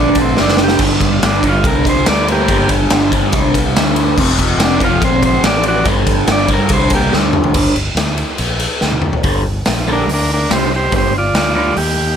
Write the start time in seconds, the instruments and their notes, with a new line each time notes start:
Already playing: fingered electric bass A#1, overdriven electric guitar D3 A3 D4
0.00 transistor combo organ D4
0.15 kick, ride
0.21 transistor combo organ C4
0.36 fingered electric bass F#1, overdriven electric guitar D3 A3 D4, snare
0.41 transistor combo organ D4
0.48 snare
0.57 snare
0.64 transistor combo organ G4
0.68 snare
0.78 fingered electric bass G1, overdriven electric guitar G2 D3 G3, kick, crash, splash
1.01 kick, ride
1.23 fingered electric bass G1, transistor combo organ D4, snare, ride
1.42 overdriven electric guitar G2 D3 G3, kick, ride
1.49 transistor combo organ F4
1.64 fingered electric bass C2, transistor combo organ A#4, kick, ride
1.85 kick, ride
1.89 transistor combo organ C5
2.06 fingered electric bass D2, overdriven electric guitar G2 D3 G3, transistor combo organ D5, snare, ride
2.28 transistor combo organ A#3, ride
2.32 transistor combo organ G4
2.48 fingered electric bass G1, overdriven electric guitar G2 D3 G3, kick, ride
2.69 kick, ride
2.90 fingered electric bass G1, snare, ride
3.12 overdriven electric guitar G2 D3 G3, kick, ride
3.32 fingered electric bass C2, kick, ride
3.54 kick, ride
3.74 fingered electric bass D2, overdriven electric guitar G2 D3, snare, ride
3.79 overdriven electric guitar G3
3.96 ride
4.18 fingered electric bass F1, overdriven electric guitar F2 C3 F3, kick, crash
4.39 kick, ride
4.58 fingered electric bass F1, snare, ride
4.63 transistor combo organ D4
4.80 overdriven electric guitar F2 C3 F3, kick, ride
4.85 transistor combo organ F4
5.02 fingered electric bass A#1, transistor combo organ C5, kick, ride
5.23 transistor combo organ C5, kick, ride
5.43 fingered electric bass A1, overdriven electric guitar F2 C3 F3, transistor combo organ D5, snare, ride
5.63 ride
5.68 transistor combo organ F#4 D5
5.85 fingered electric bass G1, overdriven electric guitar G2 D3 G3, kick, ride
6.07 kick, ride
6.27 fingered electric bass G1, snare, ride
6.32 transistor combo organ D5
6.48 overdriven electric guitar G2 D3 G3, kick, ride
6.53 transistor combo organ A#4
6.69 fingered electric bass C2, kick, ride
6.74 transistor combo organ C5
6.90 kick, ride
6.94 transistor combo organ A#3 G4
7.12 fingered electric bass D2, overdriven electric guitar G2 D3 G3, snare
7.33 mid tom
7.44 floor tom
7.54 fingered electric bass G1, overdriven electric guitar G2 D3 G3, kick, crash
7.75 fingered electric bass G1, ride
7.95 fingered electric bass D2, snare, ride
8.18 ride
8.38 fingered electric bass A#1, ride
8.59 ride
8.81 fingered electric bass D2, snare
8.92 high tom
9.02 mid tom
9.13 floor tom
9.23 fingered electric bass G1, overdriven electric guitar G2 D3 G3, kick, open hi-hat
9.65 fingered electric bass A#1, snare, open hi-hat
9.87 overdriven electric guitar G2 D3 G3, transistor combo organ A4
9.93 transistor combo organ D4 A#4
10.07 fingered electric bass D2, open hi-hat
10.14 transistor combo organ D4 A#4
10.34 transistor combo organ D4 A#4
10.50 fingered electric bass C2, overdriven electric guitar G2 D3 G3, transistor combo organ G4 C5, snare, open hi-hat
10.76 transistor combo organ G4 C5
10.91 fingered electric bass G1, overdriven electric guitar G2 D3 G3, kick, open hi-hat
10.96 transistor combo organ G4 C5
11.18 transistor combo organ F4 D5
11.34 fingered electric bass D2, transistor combo organ F4 D5, snare, open hi-hat
11.54 overdriven electric guitar G2 D3 G3, transistor combo organ F4 D5
11.77 fingered electric bass D#2, transistor combo organ G4, open hi-hat